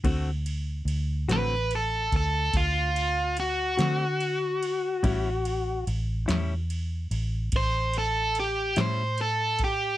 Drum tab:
RD |xxxxxxxxxxxx|xxxxxxxxxxxx|
SD |---o-----o--|---o-----o--|
BD |o----oo-----|o-----o----o|